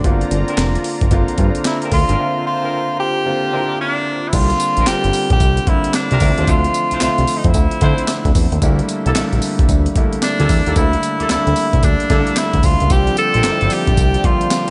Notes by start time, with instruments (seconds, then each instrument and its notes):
Already playing: analog synth pad D5
0.04 analog synth bass G1, grand piano D3 A#3 C4 F4, analog synth pad F4 A#5, kick, closed hi-hat
0.21 closed hi-hat
0.31 analog synth bass G1, closed hi-hat
0.48 horn section C4 D4 F4 A#4, closed hi-hat
0.57 analog synth bass F1, snare, clap, closed hi-hat
0.75 closed hi-hat
0.84 open hi-hat
1.01 analog synth bass G1, kick, closed hi-hat
1.11 analog synth bass G1, grand piano D3 A#3 C4 F4, kick, closed hi-hat
1.28 closed hi-hat
1.38 analog synth bass G2, grand piano D3 A#3 C4 F4, kick, closed hi-hat
1.55 closed hi-hat
1.65 tenor saxophone E4, snare, clap, closed hi-hat
1.82 horn section C4 D4 F4 A#4, closed hi-hat
1.92 analog synth bass D2, tenor saxophone F4, kick, open hi-hat
2.08 analog synth bass G#1, horn section C4 D4 F4 A#4, closed hi-hat
2.18 grand piano D3 A#3 C4 E5, analog synth pad C5
2.47 tenor saxophone F4
2.62 horn section C4 D4 F4 A#4
3.00 tenor saxophone G4
3.26 grand piano D3 A#3 C4 F4
3.52 grand piano D3 A#3 C4 E4, horn section C4 D4 F4 A#4
3.61 grand piano F4
3.81 tenor saxophone D4
4.28 tenor saxophone E4
4.33 analog synth bass C2, grand piano D3 G3 A#3 C4 F4, tenor saxophone F4, kick, closed hi-hat, crash, tambourine
4.50 closed hi-hat
4.60 closed hi-hat, tambourine
4.77 analog synth bass A#1, horn section C4 D4 F4 A#4, closed hi-hat
4.86 analog synth bass G1, grand piano D3 G3 A#3 C4 F4, tenor saxophone G4, snare, clap, closed hi-hat, tambourine
5.04 analog synth bass G1, closed hi-hat
5.13 open hi-hat, tambourine
5.30 analog synth bass A#1, tenor saxophone G4, kick, closed hi-hat
5.40 analog synth bass C2, kick, closed hi-hat, tambourine
5.57 closed hi-hat
5.67 grand piano D3 G3 A#3 C4 D4, tenor saxophone E4, kick, closed hi-hat
5.84 closed hi-hat
5.94 tenor saxophone D4, snare, clap, closed hi-hat, tambourine
6.11 analog synth bass C2, horn section C4 D4 F4 A#4, closed hi-hat
6.20 analog synth bass D2, grand piano D3 E3 A3 C4 E5, kick, open hi-hat, tambourine
6.27 grand piano F3
6.38 analog synth bass D#2, horn section D4 E4 F4 C5, closed hi-hat
6.47 analog synth bass D2, tenor saxophone F4, kick, closed hi-hat, tambourine
6.64 closed hi-hat
6.74 closed hi-hat, tambourine
6.91 analog synth bass C2, horn section D4 E4 F4 C5, closed hi-hat
7.00 analog synth bass C2, grand piano D3 F3 A3 C4 E5, tenor saxophone F4, snare, clap, closed hi-hat, tambourine
7.18 analog synth bass C2, closed hi-hat
7.27 open hi-hat, tambourine
7.38 tenor saxophone D#4
7.44 analog synth bass F2, tenor saxophone E4, kick, closed hi-hat
7.54 analog synth bass D2, kick, closed hi-hat, tambourine
7.71 closed hi-hat
7.81 analog synth bass D3, grand piano D3 F3 A3 C4 E4, horn section D4 E4 F4 C5, kick, closed hi-hat
7.98 closed hi-hat
8.08 snare, clap, closed hi-hat, tambourine
8.25 analog synth bass D2, kick, closed hi-hat
8.35 analog synth bass E2, kick, open hi-hat, tambourine
8.52 analog synth bass D#2, closed hi-hat
8.62 analog synth bass D2, grand piano D3 G3 A3 A#3 E4, kick, closed hi-hat, tambourine
8.79 closed hi-hat
8.88 closed hi-hat, tambourine
9.06 analog synth bass C2, horn section A#3 E4 G4 A4, closed hi-hat
9.15 analog synth bass A#1, grand piano D3 G3 A3 A#3 E4, snare, clap, closed hi-hat, tambourine
9.33 analog synth bass A#1, closed hi-hat
9.42 open hi-hat, tambourine
9.59 analog synth bass C2, kick, closed hi-hat
9.69 analog synth bass D2, kick, closed hi-hat, tambourine
9.86 closed hi-hat
9.96 grand piano D3 G3 A3 A#3 E4, kick, closed hi-hat
10.13 closed hi-hat
10.22 tenor saxophone D4, snare, clap, closed hi-hat, tambourine
10.39 analog synth bass D2, horn section A#3 E4 G4 A4, closed hi-hat
10.49 analog synth bass E2, kick, open hi-hat, tambourine
10.66 analog synth bass D#2, horn section A#3 E4 G4 A4, closed hi-hat
10.76 analog synth bass D2, grand piano D3 G3 A3 A#3 E4, tenor saxophone E4, kick, closed hi-hat, tambourine
10.93 closed hi-hat
11.03 closed hi-hat, tambourine
11.20 analog synth bass D2, horn section A#3 E4 G4 A4, closed hi-hat
11.29 analog synth bass D2, grand piano D3 G3 A3 A#3 D4, tenor saxophone E4, snare, clap, closed hi-hat, tambourine
11.47 analog synth bass D2, closed hi-hat
11.56 open hi-hat, tambourine
11.73 analog synth bass C2, kick, closed hi-hat
11.83 analog synth bass D2, tenor saxophone D4, kick, closed hi-hat, tambourine
12.00 closed hi-hat
12.10 grand piano D3 G3 A3 A#3 E4, analog synth bass D3, horn section A#3 E4 G4 A4, kick, snare, closed hi-hat
12.27 closed hi-hat
12.36 tenor saxophone E4, snare, clap, closed hi-hat, tambourine
12.53 analog synth bass D2, kick, closed hi-hat
12.63 analog synth bass D2, tenor saxophone F4, kick, open hi-hat, tambourine
12.80 analog synth bass C#2, closed hi-hat
12.90 analog synth bass C2, grand piano D3 G3 A#3 C4 F4, analog synth pad F3 D5 G5, tenor saxophone G4, kick, closed hi-hat, tambourine
13.07 closed hi-hat
13.17 tenor saxophone A4, closed hi-hat, tambourine
13.34 analog synth bass A#1, horn section C4 D4 F4 A#4, closed hi-hat
13.43 analog synth bass G1, grand piano D3 G3 A#3 C4 D4, snare, clap, closed hi-hat, tambourine
13.52 grand piano E4
13.61 analog synth bass G1, closed hi-hat
13.70 tenor saxophone G4, open hi-hat, tambourine
13.87 analog synth bass A#1, kick, closed hi-hat
13.97 analog synth bass C2, kick, closed hi-hat, tambourine
14.14 closed hi-hat
14.24 grand piano D3 G3 A#3 C4 F4, tenor saxophone F4, kick, closed hi-hat
14.41 closed hi-hat
14.51 snare, clap, closed hi-hat, tambourine